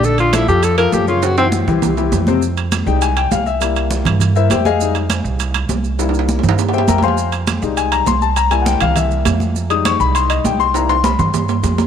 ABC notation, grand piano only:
X:1
M:4/4
L:1/16
Q:1/4=202
K:Bbdor
V:1 name="Grand piano"
[=D,=D=d]4 [F,F=A]2 [F,FA]4 [F,FA]4 [_D,_D_d]2- | [D,Dd]2 [=E,=E_G]4 [E,E=G]4 [E,EG]4 [C,Cc]2 | [K:Fm] z6 g2 a2 g2 f2 =e2- | =e4 z6 [=EBce]2 [Gceg]2 [A_efa]2- |
[Aefa]2 z12 z2 | z8 z2 [Gc=e_g=g]2 [Begb]2 [cfac']2- | [cfac']2 z6 a2 b2 c'2 =a2 | b2 a2 [_g=g]2 f2 =e6 z2 |
z2 e'2 d'2 =b2 c'2 e2 g2 c'2 | b2 c'2 =b2 c'8- c' z |]
V:2 name="Grand piano"
z16 | z16 | [K:Fm] z6 [G,A,E]2 z8 | [G,B,=E]16 |
[G,A,E]2 z12 z2 | [G,B,=E]16 | z6 [G,A,E]6 z4 | z2 [G,B,=E]12- [G,B,E]2 |
z2 [G,A,E]12- [G,A,E]2 | [G,B,=E]2 z12 z2 |]